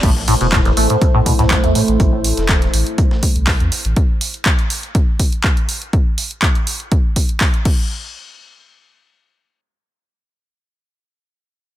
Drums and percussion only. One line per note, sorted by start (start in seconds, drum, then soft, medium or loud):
0.03 kick loud
0.03 closed hi-hat medium
0.03 crash medium
0.16 snare soft
0.28 snare soft
0.28 closed hi-hat medium
0.28 open hi-hat loud
0.41 closed hi-hat medium
0.52 kick loud
0.52 snare loud
0.52 clap loud
0.52 closed hi-hat medium
0.65 snare soft
0.65 closed hi-hat soft
0.77 closed hi-hat medium
0.77 open hi-hat loud
0.90 closed hi-hat medium
1.01 kick loud
1.01 closed hi-hat medium
1.26 kick medium
1.26 closed hi-hat medium
1.26 open hi-hat loud
1.39 snare soft
1.39 closed hi-hat soft
1.51 kick loud
1.51 snare loud
1.51 clap loud
1.51 closed hi-hat medium
1.64 closed hi-hat soft
1.75 closed hi-hat medium
1.75 open hi-hat loud
1.88 closed hi-hat medium
2.00 kick loud
2.00 closed hi-hat medium
2.24 closed hi-hat medium
2.24 open hi-hat loud
2.37 snare soft
2.37 closed hi-hat medium
2.49 kick loud
2.49 snare loud
2.49 clap loud
2.49 closed hi-hat medium
2.62 snare soft
2.62 closed hi-hat soft
2.74 closed hi-hat medium
2.74 open hi-hat loud
2.87 closed hi-hat soft
2.98 kick loud
2.98 closed hi-hat medium
3.11 snare soft
3.23 kick medium
3.23 closed hi-hat medium
3.23 open hi-hat loud
3.36 closed hi-hat soft
3.47 kick loud
3.47 snare loud
3.47 clap loud
3.47 closed hi-hat medium
3.47 open hi-hat medium
3.60 closed hi-hat soft
3.72 closed hi-hat medium
3.72 open hi-hat loud
3.85 closed hi-hat medium
3.96 kick loud
3.96 closed hi-hat medium
4.21 open hi-hat loud
4.34 closed hi-hat soft
4.46 kick loud
4.46 clap loud
4.46 closed hi-hat medium
4.59 closed hi-hat soft
4.70 open hi-hat loud
4.83 closed hi-hat soft
4.95 kick loud
4.95 closed hi-hat medium
5.19 kick medium
5.19 open hi-hat loud
5.32 closed hi-hat soft
5.44 kick loud
5.44 clap loud
5.44 closed hi-hat medium
5.57 closed hi-hat soft
5.69 open hi-hat loud
5.82 closed hi-hat soft
5.93 kick loud
5.93 closed hi-hat medium
6.18 open hi-hat medium
6.31 closed hi-hat soft
6.42 kick loud
6.42 clap loud
6.42 closed hi-hat medium
6.55 closed hi-hat soft
6.67 open hi-hat loud
6.80 closed hi-hat soft
6.92 kick loud
6.92 closed hi-hat medium
7.16 kick medium
7.16 open hi-hat loud
7.29 closed hi-hat soft
7.41 kick loud
7.41 clap loud
7.41 open hi-hat medium
7.54 closed hi-hat soft
7.65 kick loud
7.65 crash medium